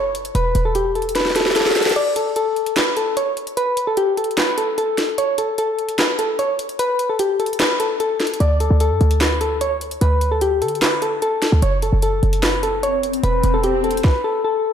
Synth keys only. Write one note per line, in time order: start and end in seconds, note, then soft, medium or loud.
0.35 0.63 B4 loud
0.65 0.73 A4 medium
0.75 0.91 G4 medium
0.95 1.11 A4 medium
1.16 1.31 B4 medium
1.36 1.51 A4 medium
1.56 1.94 A4 medium
1.96 2.11 D5 loud
2.16 2.32 A4 medium
2.36 2.74 A4 medium
2.77 2.92 B4 medium
2.97 3.12 A4 medium
3.17 3.32 C#5 medium
3.57 3.85 B4 loud
3.87 3.95 A4 medium
3.97 4.13 G4 medium
4.17 4.33 A4 medium
4.38 4.53 B4 medium
4.58 4.73 A4 medium
4.78 5.16 A4 medium
5.18 5.33 C#5 loud
5.38 5.54 A4 medium
5.58 5.96 A4 medium
5.99 6.14 B4 medium
6.19 6.34 A4 medium
6.39 6.54 C#5 medium
6.79 7.08 B4 loud
7.09 7.17 A4 medium
7.20 7.35 G4 medium
7.40 7.55 A4 medium
7.60 7.75 B4 medium
7.80 7.95 A4 medium
8.00 8.38 A4 medium
8.40 8.56 D5 loud
8.60 8.76 A4 medium
8.81 9.18 A4 medium
9.21 9.36 B4 medium
9.41 9.56 A4 medium
9.61 9.76 C#5 medium
10.01 10.30 B4 loud
10.31 10.39 A4 medium
10.42 10.57 G4 medium
10.62 10.77 A4 medium
10.82 10.97 B4 medium
11.02 11.17 A4 medium
11.22 11.60 A4 medium
11.62 11.78 C#5 loud
11.83 11.98 A4 medium
12.03 12.41 A4 medium
12.43 12.58 B4 medium
12.63 12.78 A4 medium
12.83 12.99 C#5 loud
13.23 13.52 B4 loud
13.54 13.61 A4 medium
13.64 13.79 G4 medium
13.84 13.99 A4 medium
14.04 14.19 B4 loud
14.24 14.40 A4 medium
14.44 14.73 A4 medium